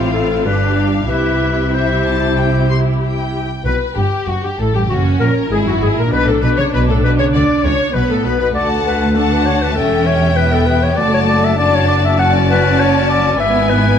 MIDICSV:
0, 0, Header, 1, 7, 480
1, 0, Start_track
1, 0, Tempo, 638298
1, 820, Time_signature, 4, 2, 24, 8
1, 2745, Tempo, 619195
1, 4185, Tempo, 606061
1, 10900, End_track
2, 0, Start_track
2, 0, Title_t, "Clarinet"
2, 0, Program_c, 0, 71
2, 97, Note_on_c, 0, 69, 44
2, 333, Note_off_c, 0, 69, 0
2, 339, Note_on_c, 0, 71, 51
2, 644, Note_off_c, 0, 71, 0
2, 815, Note_on_c, 0, 71, 53
2, 1307, Note_on_c, 0, 72, 43
2, 1318, Note_off_c, 0, 71, 0
2, 2266, Note_off_c, 0, 72, 0
2, 2745, Note_on_c, 0, 71, 54
2, 2853, Note_off_c, 0, 71, 0
2, 2991, Note_on_c, 0, 67, 51
2, 3229, Note_on_c, 0, 66, 47
2, 3240, Note_off_c, 0, 67, 0
2, 3346, Note_off_c, 0, 66, 0
2, 3350, Note_on_c, 0, 67, 43
2, 3404, Note_off_c, 0, 67, 0
2, 3469, Note_on_c, 0, 69, 53
2, 3587, Note_off_c, 0, 69, 0
2, 3597, Note_on_c, 0, 67, 45
2, 3649, Note_off_c, 0, 67, 0
2, 3706, Note_on_c, 0, 66, 51
2, 3814, Note_off_c, 0, 66, 0
2, 3944, Note_on_c, 0, 70, 52
2, 4053, Note_off_c, 0, 70, 0
2, 4188, Note_on_c, 0, 68, 55
2, 4242, Note_off_c, 0, 68, 0
2, 4310, Note_on_c, 0, 66, 48
2, 4365, Note_off_c, 0, 66, 0
2, 4433, Note_on_c, 0, 68, 51
2, 4487, Note_off_c, 0, 68, 0
2, 4559, Note_on_c, 0, 70, 52
2, 4670, Note_off_c, 0, 70, 0
2, 4675, Note_on_c, 0, 71, 62
2, 4801, Note_on_c, 0, 69, 53
2, 4813, Note_off_c, 0, 71, 0
2, 4908, Note_on_c, 0, 71, 55
2, 4920, Note_off_c, 0, 69, 0
2, 5032, Note_off_c, 0, 71, 0
2, 5046, Note_on_c, 0, 73, 50
2, 5098, Note_off_c, 0, 73, 0
2, 5156, Note_on_c, 0, 71, 57
2, 5210, Note_off_c, 0, 71, 0
2, 5283, Note_on_c, 0, 69, 46
2, 5392, Note_off_c, 0, 69, 0
2, 5396, Note_on_c, 0, 71, 56
2, 5450, Note_off_c, 0, 71, 0
2, 5517, Note_on_c, 0, 73, 52
2, 5571, Note_off_c, 0, 73, 0
2, 5633, Note_on_c, 0, 74, 60
2, 5868, Note_off_c, 0, 74, 0
2, 5871, Note_on_c, 0, 73, 58
2, 6108, Note_on_c, 0, 71, 61
2, 6120, Note_off_c, 0, 73, 0
2, 6233, Note_off_c, 0, 71, 0
2, 6243, Note_on_c, 0, 69, 52
2, 6351, Note_on_c, 0, 71, 57
2, 6363, Note_off_c, 0, 69, 0
2, 6476, Note_off_c, 0, 71, 0
2, 6483, Note_on_c, 0, 71, 51
2, 6537, Note_off_c, 0, 71, 0
2, 6591, Note_on_c, 0, 74, 57
2, 6702, Note_off_c, 0, 74, 0
2, 6832, Note_on_c, 0, 71, 59
2, 7077, Note_on_c, 0, 69, 52
2, 7089, Note_off_c, 0, 71, 0
2, 7208, Note_on_c, 0, 71, 53
2, 7220, Note_off_c, 0, 69, 0
2, 7311, Note_on_c, 0, 73, 62
2, 7323, Note_off_c, 0, 71, 0
2, 7440, Note_on_c, 0, 71, 57
2, 7452, Note_off_c, 0, 73, 0
2, 7550, Note_on_c, 0, 69, 65
2, 7562, Note_off_c, 0, 71, 0
2, 7791, Note_on_c, 0, 73, 68
2, 7803, Note_off_c, 0, 69, 0
2, 8032, Note_on_c, 0, 71, 66
2, 8044, Note_off_c, 0, 73, 0
2, 8160, Note_on_c, 0, 69, 58
2, 8172, Note_off_c, 0, 71, 0
2, 8268, Note_on_c, 0, 71, 58
2, 8280, Note_off_c, 0, 69, 0
2, 8398, Note_on_c, 0, 73, 64
2, 8410, Note_off_c, 0, 71, 0
2, 8511, Note_on_c, 0, 74, 74
2, 8523, Note_off_c, 0, 73, 0
2, 8635, Note_off_c, 0, 74, 0
2, 8647, Note_on_c, 0, 73, 65
2, 8699, Note_off_c, 0, 73, 0
2, 8760, Note_on_c, 0, 74, 67
2, 8887, Note_on_c, 0, 76, 62
2, 8899, Note_off_c, 0, 74, 0
2, 8991, Note_off_c, 0, 76, 0
2, 8996, Note_on_c, 0, 74, 70
2, 9125, Note_on_c, 0, 73, 62
2, 9137, Note_off_c, 0, 74, 0
2, 9228, Note_off_c, 0, 73, 0
2, 9233, Note_on_c, 0, 74, 67
2, 9288, Note_off_c, 0, 74, 0
2, 9365, Note_on_c, 0, 76, 65
2, 9473, Note_off_c, 0, 76, 0
2, 9478, Note_on_c, 0, 78, 77
2, 9586, Note_off_c, 0, 78, 0
2, 9720, Note_on_c, 0, 71, 77
2, 9958, Note_on_c, 0, 73, 67
2, 9970, Note_off_c, 0, 71, 0
2, 10190, Note_off_c, 0, 73, 0
2, 10195, Note_on_c, 0, 74, 74
2, 10426, Note_off_c, 0, 74, 0
2, 10432, Note_on_c, 0, 76, 78
2, 10673, Note_on_c, 0, 71, 70
2, 10685, Note_off_c, 0, 76, 0
2, 10900, Note_off_c, 0, 71, 0
2, 10900, End_track
3, 0, Start_track
3, 0, Title_t, "Violin section"
3, 0, Program_c, 1, 48
3, 0, Note_on_c, 1, 77, 39
3, 334, Note_off_c, 1, 77, 0
3, 343, Note_on_c, 1, 77, 36
3, 811, Note_off_c, 1, 77, 0
3, 824, Note_on_c, 1, 76, 34
3, 1296, Note_off_c, 1, 76, 0
3, 1305, Note_on_c, 1, 76, 35
3, 1531, Note_off_c, 1, 76, 0
3, 1542, Note_on_c, 1, 81, 37
3, 1784, Note_off_c, 1, 81, 0
3, 1788, Note_on_c, 1, 79, 34
3, 2025, Note_on_c, 1, 84, 37
3, 2026, Note_off_c, 1, 79, 0
3, 2085, Note_off_c, 1, 84, 0
3, 2263, Note_on_c, 1, 79, 38
3, 2735, Note_off_c, 1, 79, 0
3, 2747, Note_on_c, 1, 71, 52
3, 2809, Note_off_c, 1, 71, 0
3, 2986, Note_on_c, 1, 67, 43
3, 3222, Note_off_c, 1, 67, 0
3, 3228, Note_on_c, 1, 66, 39
3, 3346, Note_on_c, 1, 67, 41
3, 3348, Note_off_c, 1, 66, 0
3, 3467, Note_off_c, 1, 67, 0
3, 3468, Note_on_c, 1, 69, 44
3, 3588, Note_off_c, 1, 69, 0
3, 3592, Note_on_c, 1, 67, 42
3, 3711, Note_off_c, 1, 67, 0
3, 3721, Note_on_c, 1, 66, 47
3, 3954, Note_off_c, 1, 66, 0
3, 3954, Note_on_c, 1, 70, 48
3, 4190, Note_off_c, 1, 70, 0
3, 4192, Note_on_c, 1, 68, 48
3, 4312, Note_off_c, 1, 68, 0
3, 4320, Note_on_c, 1, 66, 43
3, 4436, Note_off_c, 1, 66, 0
3, 4441, Note_on_c, 1, 68, 47
3, 4552, Note_on_c, 1, 70, 43
3, 4558, Note_off_c, 1, 68, 0
3, 4673, Note_off_c, 1, 70, 0
3, 4676, Note_on_c, 1, 71, 55
3, 4785, Note_on_c, 1, 69, 47
3, 4793, Note_off_c, 1, 71, 0
3, 4906, Note_on_c, 1, 71, 45
3, 4910, Note_off_c, 1, 69, 0
3, 4956, Note_off_c, 1, 71, 0
3, 5031, Note_on_c, 1, 73, 47
3, 5080, Note_off_c, 1, 73, 0
3, 5154, Note_on_c, 1, 71, 52
3, 5203, Note_off_c, 1, 71, 0
3, 5277, Note_on_c, 1, 69, 45
3, 5325, Note_off_c, 1, 69, 0
3, 5402, Note_on_c, 1, 71, 46
3, 5448, Note_off_c, 1, 71, 0
3, 5511, Note_on_c, 1, 73, 46
3, 5560, Note_off_c, 1, 73, 0
3, 5633, Note_on_c, 1, 74, 54
3, 5697, Note_off_c, 1, 74, 0
3, 5870, Note_on_c, 1, 73, 51
3, 6108, Note_off_c, 1, 73, 0
3, 6113, Note_on_c, 1, 71, 51
3, 6233, Note_off_c, 1, 71, 0
3, 6236, Note_on_c, 1, 69, 48
3, 6353, Note_on_c, 1, 71, 55
3, 6357, Note_off_c, 1, 69, 0
3, 6467, Note_off_c, 1, 71, 0
3, 6477, Note_on_c, 1, 71, 47
3, 6526, Note_off_c, 1, 71, 0
3, 6599, Note_on_c, 1, 81, 42
3, 7049, Note_off_c, 1, 81, 0
3, 7082, Note_on_c, 1, 81, 44
3, 7552, Note_off_c, 1, 81, 0
3, 7571, Note_on_c, 1, 79, 50
3, 8518, Note_on_c, 1, 81, 50
3, 8523, Note_off_c, 1, 79, 0
3, 8991, Note_off_c, 1, 81, 0
3, 9000, Note_on_c, 1, 81, 51
3, 9468, Note_off_c, 1, 81, 0
3, 9477, Note_on_c, 1, 81, 53
3, 10409, Note_off_c, 1, 81, 0
3, 10429, Note_on_c, 1, 80, 57
3, 10900, Note_off_c, 1, 80, 0
3, 10900, End_track
4, 0, Start_track
4, 0, Title_t, "Violin section"
4, 0, Program_c, 2, 48
4, 0, Note_on_c, 2, 64, 47
4, 320, Note_off_c, 2, 64, 0
4, 345, Note_on_c, 2, 62, 41
4, 821, Note_on_c, 2, 64, 39
4, 822, Note_off_c, 2, 62, 0
4, 2479, Note_off_c, 2, 64, 0
4, 2744, Note_on_c, 2, 71, 49
4, 2969, Note_off_c, 2, 71, 0
4, 2985, Note_on_c, 2, 67, 44
4, 3226, Note_off_c, 2, 67, 0
4, 3234, Note_on_c, 2, 66, 39
4, 3351, Note_off_c, 2, 66, 0
4, 3354, Note_on_c, 2, 67, 42
4, 3471, Note_off_c, 2, 67, 0
4, 3471, Note_on_c, 2, 69, 45
4, 3588, Note_on_c, 2, 67, 39
4, 3590, Note_off_c, 2, 69, 0
4, 3636, Note_off_c, 2, 67, 0
4, 3710, Note_on_c, 2, 66, 44
4, 3772, Note_off_c, 2, 66, 0
4, 3948, Note_on_c, 2, 70, 47
4, 4010, Note_off_c, 2, 70, 0
4, 4194, Note_on_c, 2, 68, 51
4, 4310, Note_off_c, 2, 68, 0
4, 4314, Note_on_c, 2, 66, 40
4, 4362, Note_off_c, 2, 66, 0
4, 4438, Note_on_c, 2, 68, 43
4, 4552, Note_on_c, 2, 70, 47
4, 4553, Note_off_c, 2, 68, 0
4, 4671, Note_off_c, 2, 70, 0
4, 4679, Note_on_c, 2, 71, 50
4, 4726, Note_off_c, 2, 71, 0
4, 4801, Note_on_c, 2, 69, 46
4, 4848, Note_off_c, 2, 69, 0
4, 4920, Note_on_c, 2, 71, 46
4, 5035, Note_off_c, 2, 71, 0
4, 5044, Note_on_c, 2, 73, 47
4, 5159, Note_on_c, 2, 71, 51
4, 5160, Note_off_c, 2, 73, 0
4, 5276, Note_off_c, 2, 71, 0
4, 5284, Note_on_c, 2, 69, 46
4, 5398, Note_off_c, 2, 69, 0
4, 5407, Note_on_c, 2, 71, 49
4, 5453, Note_off_c, 2, 71, 0
4, 5521, Note_on_c, 2, 73, 45
4, 5568, Note_off_c, 2, 73, 0
4, 5642, Note_on_c, 2, 74, 49
4, 5872, Note_off_c, 2, 74, 0
4, 5876, Note_on_c, 2, 73, 53
4, 6111, Note_on_c, 2, 71, 54
4, 6116, Note_off_c, 2, 73, 0
4, 6232, Note_off_c, 2, 71, 0
4, 6233, Note_on_c, 2, 69, 46
4, 6353, Note_off_c, 2, 69, 0
4, 6354, Note_on_c, 2, 71, 48
4, 6403, Note_off_c, 2, 71, 0
4, 6473, Note_on_c, 2, 71, 49
4, 6595, Note_off_c, 2, 71, 0
4, 6596, Note_on_c, 2, 66, 42
4, 6598, Note_on_c, 2, 78, 44
4, 7048, Note_off_c, 2, 66, 0
4, 7049, Note_off_c, 2, 78, 0
4, 7077, Note_on_c, 2, 66, 43
4, 7078, Note_on_c, 2, 78, 46
4, 7549, Note_off_c, 2, 66, 0
4, 7550, Note_off_c, 2, 78, 0
4, 7561, Note_on_c, 2, 67, 46
4, 7563, Note_on_c, 2, 76, 46
4, 8500, Note_off_c, 2, 67, 0
4, 8500, Note_off_c, 2, 76, 0
4, 8513, Note_on_c, 2, 74, 45
4, 8515, Note_on_c, 2, 66, 51
4, 8986, Note_off_c, 2, 74, 0
4, 8989, Note_off_c, 2, 66, 0
4, 8995, Note_on_c, 2, 74, 52
4, 8998, Note_on_c, 2, 66, 48
4, 9461, Note_off_c, 2, 74, 0
4, 9464, Note_off_c, 2, 66, 0
4, 9471, Note_on_c, 2, 74, 54
4, 9473, Note_on_c, 2, 66, 55
4, 10406, Note_off_c, 2, 74, 0
4, 10407, Note_off_c, 2, 66, 0
4, 10421, Note_on_c, 2, 71, 52
4, 10423, Note_on_c, 2, 64, 56
4, 10868, Note_off_c, 2, 71, 0
4, 10900, Note_off_c, 2, 64, 0
4, 10900, End_track
5, 0, Start_track
5, 0, Title_t, "Viola section"
5, 0, Program_c, 3, 48
5, 0, Note_on_c, 3, 60, 37
5, 0, Note_on_c, 3, 65, 36
5, 330, Note_off_c, 3, 65, 0
5, 331, Note_off_c, 3, 60, 0
5, 337, Note_on_c, 3, 67, 37
5, 339, Note_on_c, 3, 62, 36
5, 809, Note_off_c, 3, 67, 0
5, 817, Note_on_c, 3, 64, 36
5, 818, Note_on_c, 3, 67, 34
5, 819, Note_off_c, 3, 62, 0
5, 1294, Note_off_c, 3, 64, 0
5, 1295, Note_off_c, 3, 67, 0
5, 1303, Note_on_c, 3, 64, 37
5, 1304, Note_on_c, 3, 67, 38
5, 2565, Note_off_c, 3, 64, 0
5, 2565, Note_off_c, 3, 67, 0
5, 3708, Note_on_c, 3, 61, 42
5, 4156, Note_off_c, 3, 61, 0
5, 4184, Note_on_c, 3, 64, 47
5, 4672, Note_off_c, 3, 64, 0
5, 4672, Note_on_c, 3, 62, 52
5, 6085, Note_off_c, 3, 62, 0
5, 6113, Note_on_c, 3, 59, 46
5, 6590, Note_off_c, 3, 59, 0
5, 6600, Note_on_c, 3, 57, 47
5, 7072, Note_off_c, 3, 57, 0
5, 7081, Note_on_c, 3, 62, 52
5, 7561, Note_off_c, 3, 62, 0
5, 7561, Note_on_c, 3, 61, 47
5, 8028, Note_off_c, 3, 61, 0
5, 8038, Note_on_c, 3, 59, 51
5, 8509, Note_off_c, 3, 59, 0
5, 8516, Note_on_c, 3, 57, 54
5, 9000, Note_off_c, 3, 57, 0
5, 9004, Note_on_c, 3, 62, 57
5, 9471, Note_off_c, 3, 62, 0
5, 9475, Note_on_c, 3, 61, 58
5, 10427, Note_off_c, 3, 61, 0
5, 10432, Note_on_c, 3, 59, 62
5, 10900, Note_off_c, 3, 59, 0
5, 10900, End_track
6, 0, Start_track
6, 0, Title_t, "Cello section"
6, 0, Program_c, 4, 48
6, 0, Note_on_c, 4, 45, 42
6, 339, Note_off_c, 4, 45, 0
6, 341, Note_on_c, 4, 43, 37
6, 820, Note_off_c, 4, 43, 0
6, 820, Note_on_c, 4, 48, 37
6, 2592, Note_off_c, 4, 48, 0
6, 2745, Note_on_c, 4, 47, 49
6, 2807, Note_off_c, 4, 47, 0
6, 2986, Note_on_c, 4, 43, 42
6, 3048, Note_off_c, 4, 43, 0
6, 3228, Note_on_c, 4, 42, 41
6, 3276, Note_off_c, 4, 42, 0
6, 3345, Note_on_c, 4, 43, 41
6, 3394, Note_off_c, 4, 43, 0
6, 3471, Note_on_c, 4, 45, 46
6, 3588, Note_off_c, 4, 45, 0
6, 3593, Note_on_c, 4, 43, 44
6, 3708, Note_off_c, 4, 43, 0
6, 3716, Note_on_c, 4, 42, 49
6, 3947, Note_off_c, 4, 42, 0
6, 3948, Note_on_c, 4, 46, 48
6, 4010, Note_off_c, 4, 46, 0
6, 4186, Note_on_c, 4, 44, 46
6, 4306, Note_off_c, 4, 44, 0
6, 4308, Note_on_c, 4, 42, 42
6, 4430, Note_off_c, 4, 42, 0
6, 4430, Note_on_c, 4, 44, 42
6, 4479, Note_off_c, 4, 44, 0
6, 4551, Note_on_c, 4, 46, 47
6, 4670, Note_off_c, 4, 46, 0
6, 4670, Note_on_c, 4, 47, 54
6, 4792, Note_off_c, 4, 47, 0
6, 4793, Note_on_c, 4, 45, 48
6, 4914, Note_off_c, 4, 45, 0
6, 4915, Note_on_c, 4, 47, 45
6, 4963, Note_off_c, 4, 47, 0
6, 5034, Note_on_c, 4, 49, 46
6, 5083, Note_off_c, 4, 49, 0
6, 5155, Note_on_c, 4, 47, 50
6, 5273, Note_off_c, 4, 47, 0
6, 5277, Note_on_c, 4, 45, 45
6, 5397, Note_off_c, 4, 45, 0
6, 5397, Note_on_c, 4, 47, 49
6, 5516, Note_off_c, 4, 47, 0
6, 5517, Note_on_c, 4, 49, 46
6, 5636, Note_off_c, 4, 49, 0
6, 5638, Note_on_c, 4, 50, 51
6, 5702, Note_off_c, 4, 50, 0
6, 5874, Note_on_c, 4, 49, 50
6, 5938, Note_off_c, 4, 49, 0
6, 6114, Note_on_c, 4, 47, 50
6, 6163, Note_off_c, 4, 47, 0
6, 6237, Note_on_c, 4, 45, 46
6, 6356, Note_off_c, 4, 45, 0
6, 6362, Note_on_c, 4, 47, 50
6, 6469, Note_off_c, 4, 47, 0
6, 6478, Note_on_c, 4, 47, 45
6, 6598, Note_off_c, 4, 47, 0
6, 6602, Note_on_c, 4, 38, 50
6, 7530, Note_off_c, 4, 38, 0
6, 7561, Note_on_c, 4, 40, 52
6, 8519, Note_off_c, 4, 40, 0
6, 8521, Note_on_c, 4, 42, 54
6, 10427, Note_on_c, 4, 44, 62
6, 10430, Note_off_c, 4, 42, 0
6, 10900, Note_off_c, 4, 44, 0
6, 10900, End_track
7, 0, Start_track
7, 0, Title_t, "Double bass section"
7, 0, Program_c, 5, 48
7, 0, Note_on_c, 5, 33, 42
7, 337, Note_on_c, 5, 31, 40
7, 338, Note_off_c, 5, 33, 0
7, 813, Note_on_c, 5, 36, 34
7, 818, Note_off_c, 5, 31, 0
7, 2589, Note_off_c, 5, 36, 0
7, 2740, Note_on_c, 5, 35, 44
7, 2802, Note_off_c, 5, 35, 0
7, 2982, Note_on_c, 5, 31, 44
7, 3044, Note_off_c, 5, 31, 0
7, 3224, Note_on_c, 5, 30, 39
7, 3273, Note_off_c, 5, 30, 0
7, 3461, Note_on_c, 5, 33, 47
7, 3582, Note_off_c, 5, 33, 0
7, 3703, Note_on_c, 5, 30, 44
7, 3940, Note_off_c, 5, 30, 0
7, 3943, Note_on_c, 5, 34, 48
7, 4005, Note_off_c, 5, 34, 0
7, 4185, Note_on_c, 5, 32, 49
7, 4306, Note_off_c, 5, 32, 0
7, 4427, Note_on_c, 5, 32, 45
7, 4476, Note_off_c, 5, 32, 0
7, 4672, Note_on_c, 5, 35, 51
7, 4793, Note_off_c, 5, 35, 0
7, 4912, Note_on_c, 5, 35, 46
7, 4960, Note_off_c, 5, 35, 0
7, 5155, Note_on_c, 5, 35, 50
7, 5273, Note_off_c, 5, 35, 0
7, 5396, Note_on_c, 5, 35, 48
7, 5516, Note_off_c, 5, 35, 0
7, 5636, Note_on_c, 5, 38, 55
7, 5700, Note_off_c, 5, 38, 0
7, 5874, Note_on_c, 5, 37, 50
7, 5938, Note_off_c, 5, 37, 0
7, 6116, Note_on_c, 5, 35, 54
7, 6164, Note_off_c, 5, 35, 0
7, 6357, Note_on_c, 5, 35, 49
7, 6479, Note_off_c, 5, 35, 0
7, 6598, Note_on_c, 5, 38, 46
7, 7529, Note_off_c, 5, 38, 0
7, 7556, Note_on_c, 5, 28, 48
7, 8516, Note_off_c, 5, 28, 0
7, 8516, Note_on_c, 5, 30, 52
7, 10427, Note_off_c, 5, 30, 0
7, 10428, Note_on_c, 5, 32, 59
7, 10900, Note_off_c, 5, 32, 0
7, 10900, End_track
0, 0, End_of_file